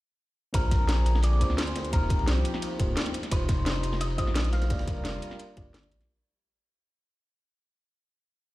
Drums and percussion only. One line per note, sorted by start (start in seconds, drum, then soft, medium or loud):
0.54 kick loud
0.54 closed hi-hat loud
0.54 ride medium
0.71 kick loud
0.71 snare medium
0.71 closed hi-hat medium
0.71 ride medium
0.88 snare loud
0.88 closed hi-hat loud
0.88 ride loud
1.06 closed hi-hat medium
1.06 ride medium
1.15 snare soft
1.22 closed hi-hat loud
1.22 ride medium
1.33 ride soft
1.41 kick medium
1.41 closed hi-hat medium
1.41 ride medium
1.50 snare soft
1.58 snare loud
1.58 closed hi-hat loud
1.58 ride medium
1.67 closed hi-hat soft
1.75 snare loud
1.75 closed hi-hat medium
1.75 ride medium
1.85 closed hi-hat soft
1.93 kick loud
1.93 closed hi-hat loud
1.93 ride medium
2.09 kick loud
2.09 closed hi-hat medium
2.09 ride medium
2.19 ride soft
2.27 snare loud
2.27 closed hi-hat medium
2.27 ride medium
2.45 closed hi-hat medium
2.45 ride medium
2.54 snare soft
2.62 closed hi-hat medium
2.62 ride medium
2.79 kick loud
2.79 closed hi-hat medium
2.79 ride medium
2.97 snare loud
2.97 closed hi-hat medium
2.97 ride loud
3.06 snare medium
3.06 closed hi-hat soft
3.14 closed hi-hat medium
3.14 ride medium
3.23 snare soft
3.23 closed hi-hat soft
3.23 ride soft
3.31 kick loud
3.31 closed hi-hat medium
3.31 ride loud
3.48 kick loud
3.48 snare medium
3.48 closed hi-hat medium
3.48 ride medium
3.66 snare loud
3.66 closed hi-hat medium
3.66 ride medium
3.83 closed hi-hat medium
3.83 ride medium
3.92 snare soft
4.00 closed hi-hat medium
4.00 ride medium
4.10 ride soft
4.18 kick medium
4.18 closed hi-hat medium
4.18 ride medium
4.27 snare soft
4.35 snare loud
4.35 closed hi-hat medium
4.35 ride medium
4.44 closed hi-hat soft
4.52 snare loud
4.52 closed hi-hat medium
4.52 ride medium
4.62 snare loud
4.62 closed hi-hat soft
4.62 ride medium
4.70 kick loud
4.70 snare loud
4.70 closed hi-hat medium
4.70 ride medium
4.79 snare loud
4.79 ride medium
4.88 kick loud
4.88 closed hi-hat medium
4.88 ride medium
4.96 ride soft
5.05 snare loud
5.05 closed hi-hat medium
5.05 ride medium
5.22 closed hi-hat medium
5.22 ride medium
5.31 snare soft
5.39 closed hi-hat medium
5.39 ride medium
5.57 kick loud
5.57 closed hi-hat medium
5.57 ride medium
5.74 snare loud
5.74 closed hi-hat medium
5.74 ride medium
5.83 snare soft
5.83 closed hi-hat soft
5.91 closed hi-hat medium
5.91 ride medium
6.01 snare soft
6.01 closed hi-hat soft
6.01 ride soft